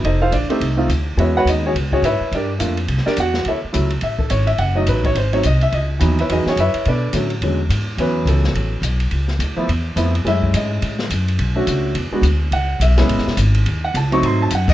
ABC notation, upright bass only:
X:1
M:4/4
L:1/8
Q:"Swing" 1/4=212
K:Alyd
V:1 name="Upright bass" clef=bass
=F,,,2 A,,, z =C,,2 =D,,2 | E,,2 D,,2 C,,2 G,, z | =G,,2 =F,,2 =C,, z E,,2 | =D,, z C,,2 A,,,2 G,,,2 |
F,,,2 A,,,2 G,,,2 ^B,,,2 | C,,2 D,,2 E,, z F,, z | B,,2 A,,2 E,,2 G,,2 | E,,2 C,,2 A,,,2 B,,,2 |
C,,2 =D,, z E,,2 ^E,,2 | F,,2 G,,2 A,,2 F,,2 | B,,,2 C,,2 E,, z =D,,2 | C,,2 B,,,2 (3A,,, G,,, E,,, G,,,2 |
D,,2 C,,2 G,,2 F,,2 |]